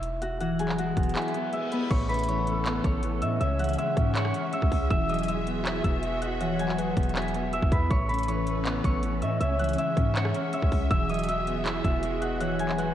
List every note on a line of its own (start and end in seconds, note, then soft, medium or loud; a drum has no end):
0.00 0.93 E1 loud
0.00 1.54 E4 medium
0.00 1.53 E5 medium
0.00 closed hi-hat medium
0.22 0.41 F#4 medium
0.22 0.40 F#5 medium
0.22 closed hi-hat medium
0.41 1.34 E3 medium
0.41 0.79 F#4 medium
0.41 0.78 F#5 loud
0.41 closed hi-hat medium
0.59 1.53 F#3 medium
0.59 1.16 G#4 medium
0.59 1.16 G#5 medium
0.59 closed hi-hat medium
0.69 clap medium
0.78 1.52 G#3 medium
0.78 3.23 F#4 medium
0.78 2.39 F#5 medium
0.78 closed hi-hat medium
0.97 1.15 E1 loud
0.97 1.33 B3 medium
0.97 kick medium
0.97 closed hi-hat medium
1.03 closed hi-hat medium
1.09 closed hi-hat medium
1.15 1.90 E4 loud
1.15 3.44 G#4 medium
1.15 2.66 G#5 medium
1.15 clap loud
1.15 closed hi-hat medium
1.15 reverse cymbal medium
1.22 closed hi-hat medium
1.28 closed hi-hat soft
1.34 1.91 B3 medium
1.34 closed hi-hat medium
1.53 1.91 G#3 medium
1.53 4.15 E4 medium
1.53 3.22 E5 medium
1.53 closed hi-hat medium
1.72 4.83 B3 medium
1.72 2.09 B4 medium
1.72 closed hi-hat medium
1.91 2.81 A1 loud
1.91 2.84 A2 loud
1.91 3.39 B3 medium
1.91 4.88 C#4 medium
1.91 3.39 A4 medium
1.91 2.28 C#5 medium
1.91 2.28 C#6 loud
1.91 kick loud
1.91 closed hi-hat medium
1.91 crash loud
2.09 3.03 C#3 medium
2.09 4.15 B4 medium
2.09 3.44 B5 medium
2.09 closed hi-hat medium
2.14 closed hi-hat medium
2.19 closed hi-hat medium
2.23 closed hi-hat medium
2.28 3.02 E3 medium
2.28 2.85 C#5 medium
2.28 2.84 C#6 medium
2.28 closed hi-hat medium
2.47 2.83 A3 medium
2.47 closed hi-hat medium
2.66 3.41 B3 loud
2.66 clap loud
2.66 closed hi-hat medium
2.84 3.23 A1 loud
2.84 3.41 A3 medium
2.84 4.77 C#5 medium
2.84 4.11 C#6 medium
2.84 kick medium
2.84 closed hi-hat medium
3.03 3.41 E3 medium
3.03 closed hi-hat medium
3.22 3.40 A2 loud
3.22 3.40 D#5 medium
3.22 3.41 E5 medium
3.22 3.40 E6 medium
3.22 closed hi-hat medium
3.40 3.77 C#2 loud
3.40 4.34 C#3 loud
3.40 7.87 G#4 medium
3.40 3.76 C#5 loud
3.40 7.87 E5 medium
3.40 3.79 E5 medium
3.40 3.78 E6 loud
3.40 closed hi-hat medium
3.59 4.53 E3 medium
3.59 4.16 F#5 medium
3.59 4.15 F#6 medium
3.59 closed hi-hat medium
3.64 closed hi-hat medium
3.69 closed hi-hat medium
3.73 closed hi-hat medium
3.78 4.52 G#3 loud
3.78 4.13 E5 medium
3.78 4.54 E5 medium
3.78 4.53 E6 medium
3.78 closed hi-hat medium
3.97 4.33 G#2 loud
3.97 4.33 C#4 medium
3.97 kick loud
3.97 closed hi-hat medium
4.15 4.90 C#5 loud
4.15 5.77 F#5 medium
4.15 5.22 F#6 medium
4.15 clap loud
4.15 closed hi-hat medium
4.25 cross-stick loud
4.34 4.91 C#4 medium
4.34 closed hi-hat medium
4.53 4.91 G#3 loud
4.53 4.91 E5 medium
4.53 4.90 E6 medium
4.53 closed hi-hat medium
4.62 4.71 C#2 loud
4.62 kick loud
4.72 4.90 C#2 loud
4.72 kick medium
4.72 open hi-hat medium
4.90 5.81 E1 loud
4.90 5.84 E3 loud
4.90 7.88 F#4 medium
4.90 5.15 E5 medium
4.90 5.15 E6 loud
4.90 kick loud
4.90 closed hi-hat medium
5.09 6.03 F#3 medium
5.09 5.34 D#5 medium
5.09 5.34 D#6 medium
5.09 closed hi-hat medium
5.14 closed hi-hat medium
5.19 closed hi-hat medium
5.23 closed hi-hat medium
5.28 6.02 G#3 medium
5.28 5.84 E5 medium
5.28 5.83 E6 medium
5.28 closed hi-hat medium
5.47 5.83 B3 medium
5.47 closed hi-hat medium
5.65 6.59 E4 loud
5.65 clap loud
5.65 closed hi-hat medium
5.84 6.93 E1 loud
5.84 6.78 B3 medium
5.84 7.54 E5 medium
5.84 6.97 E6 medium
5.84 kick medium
5.84 closed hi-hat medium
6.03 6.77 G#3 medium
6.03 closed hi-hat medium
6.22 6.40 D#5 medium
6.22 6.41 F#5 medium
6.22 6.40 F#6 medium
6.22 closed hi-hat medium
6.40 7.34 E3 medium
6.40 6.76 C#5 loud
6.40 6.79 F#5 medium
6.40 6.78 F#6 loud
6.40 closed hi-hat medium
6.59 7.53 F#3 medium
6.59 7.16 G#5 medium
6.59 7.16 G#6 medium
6.59 closed hi-hat medium
6.69 clap medium
6.78 7.52 G#3 medium
6.78 7.13 B4 medium
6.78 8.40 F#5 medium
6.78 7.85 F#6 medium
6.78 closed hi-hat medium
6.97 7.60 E1 loud
6.97 7.33 B3 medium
6.97 kick loud
6.97 closed hi-hat medium
7.03 closed hi-hat medium
7.09 closed hi-hat medium
7.15 7.91 E4 loud
7.15 8.67 G#5 medium
7.15 8.21 G#6 medium
7.15 clap loud
7.15 closed hi-hat medium
7.22 closed hi-hat medium
7.28 closed hi-hat soft
7.34 7.91 B3 medium
7.34 closed hi-hat medium
7.53 7.91 G#3 medium
7.53 9.22 E5 medium
7.53 8.67 E6 medium
7.53 closed hi-hat medium
7.62 7.71 E1 loud
7.62 kick loud
7.72 7.90 E2 loud
7.72 8.09 B4 medium
7.72 8.08 B5 medium
7.72 kick medium
7.72 closed hi-hat medium
7.90 8.81 A1 loud
7.90 8.84 A2 medium
7.90 10.88 C#4 medium
7.90 9.39 A4 medium
7.90 9.39 B4 medium
7.90 8.29 C#5 medium
7.90 8.28 C#6 loud
7.90 kick loud
7.90 closed hi-hat medium
8.09 9.03 C#3 medium
8.09 10.15 B4 medium
8.09 9.44 B5 medium
8.09 closed hi-hat medium
8.14 closed hi-hat medium
8.19 closed hi-hat medium
8.23 closed hi-hat medium
8.28 9.02 E3 medium
8.28 8.85 C#5 medium
8.28 8.84 C#6 medium
8.28 closed hi-hat medium
8.47 8.83 A3 medium
8.47 closed hi-hat medium
8.66 9.41 B3 loud
8.66 clap loud
8.66 closed hi-hat medium
8.84 9.23 A1 loud
8.84 9.41 A3 medium
8.84 10.77 C#5 medium
8.84 10.11 C#6 medium
8.84 kick medium
8.84 closed hi-hat medium
9.03 9.41 E3 medium
9.03 closed hi-hat medium
9.22 9.40 A2 loud
9.22 9.40 D#5 medium
9.22 9.41 E5 medium
9.22 9.40 E6 medium
9.22 closed hi-hat medium
9.40 9.77 C#2 loud
9.40 10.34 C#3 loud
9.40 12.94 G#4 medium
9.40 9.76 C#5 loud
9.40 12.94 E5 medium
9.40 9.79 E5 medium
9.40 9.78 E6 loud
9.40 closed hi-hat medium
9.59 10.53 E3 medium
9.59 10.16 F#5 medium
9.59 10.15 F#6 medium
9.59 closed hi-hat medium
9.64 closed hi-hat medium
9.69 closed hi-hat medium
9.73 closed hi-hat medium
9.78 10.52 G#3 medium
9.78 10.13 E5 medium
9.78 10.54 E5 medium
9.78 10.53 E6 medium
9.78 closed hi-hat medium
9.97 10.33 G#2 loud
9.97 10.33 C#4 medium
9.97 kick loud
9.97 closed hi-hat medium
10.15 10.90 C#5 loud
10.15 11.77 F#5 medium
10.15 11.22 F#6 medium
10.15 clap loud
10.15 closed hi-hat medium
10.25 cross-stick loud
10.34 10.91 C#4 medium
10.34 closed hi-hat medium
10.53 10.91 G#3 loud
10.53 10.91 E5 medium
10.53 10.90 E6 medium
10.53 closed hi-hat medium
10.62 10.71 C#2 loud
10.62 kick loud
10.72 10.90 C#2 loud
10.72 kick medium
10.72 open hi-hat medium
10.90 11.81 E1 loud
10.90 11.84 E3 loud
10.90 12.94 F#4 medium
10.90 11.15 E5 medium
10.90 11.15 E6 loud
10.90 kick loud
10.90 closed hi-hat medium
11.09 12.03 F#3 medium
11.09 11.34 D#5 medium
11.09 11.34 D#6 medium
11.09 closed hi-hat medium
11.14 closed hi-hat medium
11.19 closed hi-hat medium
11.23 closed hi-hat medium
11.28 12.02 G#3 loud
11.28 11.84 E5 medium
11.28 11.83 E6 medium
11.28 closed hi-hat medium
11.47 11.83 B3 medium
11.47 closed hi-hat medium
11.65 12.59 E4 loud
11.65 clap loud
11.65 closed hi-hat medium
11.84 12.93 E1 loud
11.84 12.78 B3 medium
11.84 12.94 E5 medium
11.84 12.94 E6 medium
11.84 kick medium
11.84 closed hi-hat medium
12.03 12.77 G#3 loud
12.03 closed hi-hat medium
12.21 12.40 D#5 medium
12.21 12.41 F#5 medium
12.21 12.40 F#6 medium
12.21 closed hi-hat medium
12.40 12.94 E3 loud
12.40 12.76 C#5 loud
12.40 12.79 F#5 medium
12.40 12.78 F#6 loud
12.40 closed hi-hat medium
12.59 12.94 F#3 medium
12.59 12.94 G#5 medium
12.59 12.94 G#6 medium
12.59 closed hi-hat medium
12.69 clap medium
12.78 12.94 G#3 medium
12.78 12.94 B4 medium
12.78 12.94 F#5 medium
12.78 12.94 F#6 medium
12.78 closed hi-hat medium